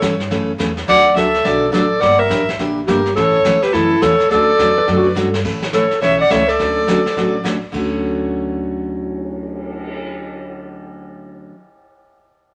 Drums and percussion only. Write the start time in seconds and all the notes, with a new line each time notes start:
0.02 snare, hi-hat pedal
0.20 snare
0.31 brush sweep, snare
0.59 snare, hi-hat pedal
0.77 snare
0.88 brush sweep, snare
1.17 snare, hi-hat pedal
1.34 snare
1.45 brush sweep, snare
1.73 snare, hi-hat pedal
2.02 brush sweep, snare
2.31 snare, hi-hat pedal
2.49 snare
2.59 brush sweep, snare
2.88 snare, hi-hat pedal
3.06 snare
3.16 brush sweep, snare
3.45 snare, hi-hat pedal
3.63 snare
3.74 brush sweep, snare
4.02 snare, hi-hat pedal
4.20 snare
4.31 brush sweep, snare
4.59 snare, hi-hat pedal
4.88 brush sweep, snare
5.16 snare, hi-hat pedal
5.34 snare
5.45 brush sweep, kick, snare, crash
5.62 snare
5.73 snare, hi-hat pedal
5.91 snare
6.02 brush sweep, snare
6.30 snare, hi-hat pedal
6.49 snare
6.59 brush sweep, snare
6.88 snare, hi-hat pedal
7.06 snare
7.17 brush sweep, snare
7.45 snare, hi-hat pedal
7.74 kick, crash
7.92 cymbal swell